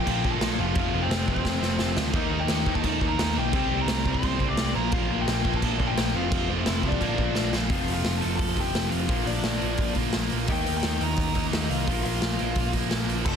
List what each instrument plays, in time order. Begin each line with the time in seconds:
Already playing: distorted electric guitar A#2 F3 A#3, lead electric guitar G5
0.00 lead electric guitar G4
0.07 picked electric bass A#1, distorted electric guitar A#2 F3 A#3, kick, crash
0.24 picked electric bass A#1, distorted electric guitar A#2 F3 A#3, kick
0.32 lead electric guitar A4 A5
0.41 picked electric bass A#1, distorted electric guitar A#2 F3 A#3, snare, crash
0.58 picked electric bass F1, distorted electric guitar F2 C3 F3, lead electric guitar F4 F5
0.75 picked electric bass F1, distorted electric guitar F2 C3 F3, kick, crash
0.93 picked electric bass F1, distorted electric guitar F2 C3 F3
1.02 lead electric guitar C4 C5
1.10 picked electric bass F1, distorted electric guitar F2 C3 F3, snare, crash
1.26 picked electric bass F1, distorted electric guitar F2 C3 F3, lead electric guitar C4 C5, kick
1.36 kick
1.45 picked electric bass F1, distorted electric guitar F2 C3 F3, kick, snare
1.60 picked electric bass F1, distorted electric guitar F2 C3 F3, snare
1.79 picked electric bass F1, distorted electric guitar F2 C3 F3, snare
1.96 picked electric bass D2, distorted electric guitar F2 C3 F3, snare
2.13 picked electric bass D#2, distorted electric guitar D#3 A#3 D#4, lead electric guitar D#4 D#5, kick, crash
2.30 picked electric bass D#2, distorted electric guitar D#3 A#3 D#4
2.40 lead electric guitar G4 G5
2.48 picked electric bass D#2, distorted electric guitar D#3 A#3 D#4, snare, crash
2.66 picked electric bass D#2, distorted electric guitar D#3 A#3 D#4, kick
2.74 lead electric guitar A4 A5, kick
2.84 picked electric bass D#2, distorted electric guitar D#3 A#3 D#4, kick, crash
3.01 picked electric bass D#2, distorted electric guitar D#3 A#3 D#4, kick
3.08 lead electric guitar A#4 A#5
3.18 picked electric bass D#2, distorted electric guitar D#3 A#3 D#4, snare, crash
3.35 picked electric bass B1, distorted electric guitar D#3 A#3 D#4, lead electric guitar G4 G5
3.53 picked electric bass C2, distorted electric guitar C3 G3 C4, lead electric guitar G4 G5, kick, crash
3.71 picked electric bass C2, distorted electric guitar C3 G3 C4
3.80 lead electric guitar A#4 A#5
3.87 picked electric bass C2, distorted electric guitar C3 G3 C4, snare, crash
4.05 picked electric bass C2, distorted electric guitar C3 G3 C4, kick
4.12 lead electric guitar C5 C6, kick
4.23 picked electric bass C2, distorted electric guitar C3 G3 C4, kick, crash
4.40 picked electric bass C2, distorted electric guitar C3 G3 C4, kick
4.48 lead electric guitar D5 D6
4.57 picked electric bass C2, distorted electric guitar C3 G3 C4, snare, crash
4.74 picked electric bass A#1, distorted electric guitar A#2 F3 A#3, lead electric guitar A#4 A#5
4.92 picked electric bass A#1, distorted electric guitar A#2 F3 A#3, lead electric guitar F4 F5, kick, crash
5.10 picked electric bass A#1, distorted electric guitar A#2 F3 A#3
5.19 lead electric guitar G4 G5
5.27 picked electric bass A#1, distorted electric guitar A#2 F3 A#3, snare, crash
5.45 picked electric bass A#1, distorted electric guitar A#2 F3 A#3, kick
5.54 lead electric guitar A4 A5, kick
5.62 picked electric bass A#1, distorted electric guitar A#2 F3 A#3, kick, crash
5.80 picked electric bass A#1, distorted electric guitar A#2 F3 A#3, kick
5.88 lead electric guitar G4 G5
5.97 picked electric bass A#1, distorted electric guitar A#2 F3 A#3, snare, crash
6.14 picked electric bass F1, distorted electric guitar F2 C3 F3, lead electric guitar F4 F5
6.32 picked electric bass F1, distorted electric guitar F2 C3 F3, kick, crash
6.49 picked electric bass F1, distorted electric guitar F2 C3 F3
6.66 picked electric bass F1, distorted electric guitar F2 C3 F3, lead electric guitar E4 E5, snare, crash
6.82 picked electric bass C2, distorted electric guitar F2 C3 F3, lead electric guitar D4, kick
6.87 lead electric guitar D5
6.92 kick
7.00 picked electric bass A#1, distorted electric guitar A#2 F3 A#3, kick, crash
7.18 picked electric bass A#1, distorted electric guitar A#2 F3 A#3, kick
7.35 picked electric bass A#1, distorted electric guitar A#2 F3 A#3, snare
7.53 picked electric bass A#1, distorted electric guitar A#2 F3 A#3, snare
7.69 picked electric bass F1, distorted electric guitar F2 C3 F3, lead electric guitar F4 F5, kick, open hi-hat
7.88 picked electric bass F1, open hi-hat
7.93 lead electric guitar F4 F5
8.05 picked electric bass F1, snare, open hi-hat
8.17 distorted electric guitar F3, lead electric guitar A4 A5
8.22 picked electric bass F1, distorted electric guitar F2 C3, open hi-hat
8.36 picked electric bass F1, lead electric guitar A4 A5, kick, open hi-hat
8.55 picked electric bass F1, distorted electric guitar F2 C3 F3, kick, open hi-hat
8.60 lead electric guitar G4 G5
8.73 picked electric bass F1, distorted electric guitar F2 C3 F3, snare, open hi-hat
8.88 lead electric guitar F4 F5, open hi-hat
8.93 picked electric bass F1
9.08 picked electric bass A#1, distorted electric guitar A#2 F3 A#3, kick, open hi-hat
9.26 picked electric bass A#1, lead electric guitar D5, open hi-hat
9.30 lead electric guitar D4
9.44 picked electric bass A#1, snare, open hi-hat
9.61 picked electric bass A#1, distorted electric guitar A#2 F3 A#3, open hi-hat
9.78 picked electric bass A#1, kick, open hi-hat
9.95 picked electric bass A#1, distorted electric guitar A#2 F3 A#3, kick, open hi-hat
10.13 picked electric bass A#1, distorted electric guitar A#2 F3 A#3, snare, open hi-hat
10.30 picked electric bass A#1, open hi-hat
10.48 picked electric bass D#2, distorted electric guitar D#3 A#3 D#4, lead electric guitar G4 G5, kick, open hi-hat
10.66 picked electric bass D#2, open hi-hat
10.75 lead electric guitar G4 G5
10.83 picked electric bass D#2, snare, open hi-hat
10.99 picked electric bass D#2, distorted electric guitar D#3 A#3 D#4, lead electric guitar A#4 A#5, open hi-hat
11.16 picked electric bass D#2, lead electric guitar A#4, kick, open hi-hat
11.21 lead electric guitar A#5
11.34 picked electric bass D#2, distorted electric guitar D#3 A#3 D#4, kick, open hi-hat
11.45 lead electric guitar D#4 D#5
11.51 picked electric bass D#2, distorted electric guitar D#3 A#3 D#4, snare, open hi-hat
11.64 lead electric guitar D#5
11.69 picked electric bass C2, lead electric guitar F4 F5, open hi-hat
11.87 picked electric bass A#1, distorted electric guitar A#2 F3 A#3, kick, open hi-hat
12.03 picked electric bass A#1, lead electric guitar F4 F5, open hi-hat
12.22 picked electric bass A#1, snare, open hi-hat
12.38 picked electric bass A#1, distorted electric guitar A#2 F3 A#3, open hi-hat
12.56 picked electric bass A#1, kick, open hi-hat
12.73 picked electric bass A#1, distorted electric guitar A#2 F3 A#3, kick, open hi-hat
12.89 picked electric bass A#1, distorted electric guitar A#2 F3 A#3, snare, open hi-hat
13.09 picked electric bass A#1, open hi-hat
13.25 picked electric bass F1, distorted electric guitar F2 C3 F3, lead electric guitar A4 A5, kick, crash